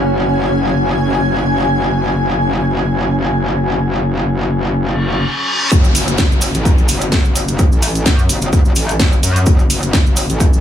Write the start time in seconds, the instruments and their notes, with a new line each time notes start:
Already playing: wobble bass F#1, ambient pad C#4 F#4 G#5
4.78 reverse cymbal
5.71 wobble bass F#1, kick, closed hi-hat, downlifter, cabasa
5.84 cabasa
5.95 open hi-hat, cabasa
6.08 wobble bass F#1, closed hi-hat, cabasa
6.18 kick, snare, closed hi-hat, cabasa
6.32 cabasa
6.41 open hi-hat, cabasa
6.54 wobble bass A1, closed hi-hat, cabasa
6.65 kick, closed hi-hat, cabasa
6.78 cabasa
6.88 wobble bass F#1, open hi-hat, cabasa
7.01 closed hi-hat, cabasa
7.12 kick, snare, closed hi-hat, cabasa
7.25 wobble bass F#1, cabasa
7.36 open hi-hat, cabasa
7.48 wobble bass F#1, closed hi-hat, cabasa
7.59 kick, closed hi-hat, cabasa
7.72 wobble bass A1, cabasa
7.82 open hi-hat, cabasa
7.95 closed hi-hat, cabasa
8.06 wobble bass F#2, kick, snare, closed hi-hat, cabasa
8.19 cabasa
8.29 wobble bass F#1, open hi-hat, cabasa
8.42 closed hi-hat, cabasa
8.53 kick, closed hi-hat, cabasa
8.65 cabasa
8.76 wobble bass A1, open hi-hat, cabasa
8.89 closed hi-hat, cabasa
9.00 wobble bass F#1, kick, snare, closed hi-hat, cabasa
9.12 cabasa
9.23 wobble bass F#2, open hi-hat, cabasa
9.36 closed hi-hat, cabasa
9.46 wobble bass F#1, kick, closed hi-hat, cabasa
9.59 cabasa
9.70 open hi-hat, cabasa
9.83 wobble bass F#1, closed hi-hat, cabasa
9.93 kick, snare, closed hi-hat, cabasa
10.06 cabasa
10.16 open hi-hat, cabasa
10.30 wobble bass A1, closed hi-hat, cabasa
10.40 kick, closed hi-hat, cabasa
10.53 cabasa